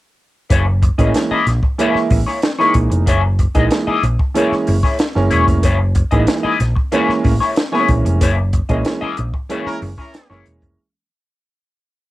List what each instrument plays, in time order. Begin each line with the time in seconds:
0.50 picked electric bass F#1, clean electric guitar A#3 E4 G#4 C#5, kick, closed hi-hat
0.66 muted clean electric guitar stroke
0.82 muted clean electric guitar stroke, kick, closed hi-hat
0.98 picked electric bass A1, upright piano E3 G#3 A#3 C#4, clean electric guitar A#3 E4 G#4 D#5, kick, closed hi-hat
1.14 muted clean electric guitar stroke, snare, closed hi-hat
1.31 clean electric guitar A#3 E4 G#4 D#5, muted picked electric bass stroke
1.47 picked electric bass A#1, muted clean electric guitar stroke, snare, closed hi-hat
1.63 muted clean electric guitar stroke, kick
1.78 upright piano E3 G#3 A#3 E4, clean electric guitar A#3 E4 G#4 C#5, closed hi-hat
1.95 muted picked electric bass stroke, snare
2.10 picked electric bass A1, muted clean electric guitar stroke, kick, open hi-hat
2.26 clean electric guitar A#3 E4 G#4 C#5, snare
2.42 muted clean electric guitar stroke, snare, closed hi-hat
2.58 upright piano E3 G#3 A#3 D#4, clean electric guitar A#3 E4 G#4 C#5, snare
2.74 picked electric bass A#1, muted clean electric guitar stroke, kick, closed hi-hat
2.90 picked electric bass F1, muted clean electric guitar stroke, closed hi-hat
3.06 picked electric bass F#1, clean electric guitar A#3 E4 G#4 C#5, kick, closed hi-hat
3.23 muted clean electric guitar stroke
3.39 muted clean electric guitar stroke, kick, closed hi-hat
3.54 picked electric bass A#1, upright piano E3 G#3 A#3 D#4, clean electric guitar A#3 E4 G#4 D#5, kick, closed hi-hat
3.70 muted clean electric guitar stroke, snare, closed hi-hat
3.87 clean electric guitar A#3 E4 G#4 D#5, muted picked electric bass stroke
4.03 picked electric bass A#1, muted clean electric guitar stroke, closed hi-hat
4.19 muted clean electric guitar stroke, kick
4.34 upright piano E3 G#3 A#3 C#4, clean electric guitar A#3 E4 G#4 C#5, closed hi-hat
4.52 muted picked electric bass stroke, snare
4.67 picked electric bass F#1, muted clean electric guitar stroke, open hi-hat
4.83 clean electric guitar A#3 E4 G#4 C#5, kick, snare
4.99 muted clean electric guitar stroke, snare, closed hi-hat
5.15 picked electric bass F#1, upright piano E3 G#3 A#3 C#4, snare
5.30 picked electric bass E1, clean electric guitar A#3 E4 G#4 C#5, closed hi-hat
5.47 picked electric bass F1, muted clean electric guitar stroke, kick, closed hi-hat
5.63 picked electric bass F#1, clean electric guitar A#3 E4 G#4 C#5, kick, closed hi-hat
5.79 muted clean electric guitar stroke
5.95 muted clean electric guitar stroke, kick, closed hi-hat
6.11 picked electric bass A1, upright piano E3 G#3 A#3 D#4, clean electric guitar A#3 E4 G#4 D#5, kick, closed hi-hat
6.27 muted clean electric guitar stroke, snare, closed hi-hat
6.43 clean electric guitar A#3 E4 G#4 D#5, muted picked electric bass stroke
6.60 picked electric bass A#1, muted clean electric guitar stroke, snare, closed hi-hat
6.75 muted clean electric guitar stroke, kick
6.92 upright piano E3 G#3 A#3 C#4, clean electric guitar A#3 E4 G#4 C#5, closed hi-hat
7.09 muted picked electric bass stroke, snare
7.24 picked electric bass A1, muted clean electric guitar stroke, kick, open hi-hat
7.40 clean electric guitar A#3 E4 G#4 C#5, snare
7.56 muted clean electric guitar stroke, snare, closed hi-hat
7.72 upright piano E3 G#3 A#3 B3, clean electric guitar A#3 E4 G#4 C#5, snare
7.80 upright piano C#4
7.88 picked electric bass A#1, kick, closed hi-hat
8.05 picked electric bass F1, muted clean electric guitar stroke, closed hi-hat
8.21 picked electric bass F#1, clean electric guitar A#3 E4 G#4 C#5, kick, closed hi-hat
8.37 muted clean electric guitar stroke
8.53 muted clean electric guitar stroke, kick, closed hi-hat
8.69 picked electric bass A#1, upright piano E3 G#3 A#3 C#4, clean electric guitar A#3 E4 G#4 D#5, kick, closed hi-hat
8.85 muted clean electric guitar stroke, snare, closed hi-hat
9.01 clean electric guitar A#3 E4 G#4 D#5, muted picked electric bass stroke
9.17 picked electric bass A#1, muted clean electric guitar stroke, closed hi-hat
9.34 muted clean electric guitar stroke, kick
9.49 upright piano E3 G#3 A#3 C#4, clean electric guitar A#3 E4 G#4 C#5, closed hi-hat
9.65 horn section C#4 E4 A#4, muted picked electric bass stroke, snare
9.82 picked electric bass F#1, muted clean electric guitar stroke, open hi-hat
9.97 clean electric guitar A#3 E4 G#4 C#5, horn section C#4 E4 A#4, kick, snare
10.14 muted clean electric guitar stroke, snare, closed hi-hat
10.30 picked electric bass F#1, upright piano E3 G#3 A#3 C#4, clean electric guitar A#3 E4 G#4 C#5, snare
10.46 picked electric bass E1, muted clean electric guitar stroke, closed hi-hat
10.62 picked electric bass F1, muted clean electric guitar stroke, kick, closed hi-hat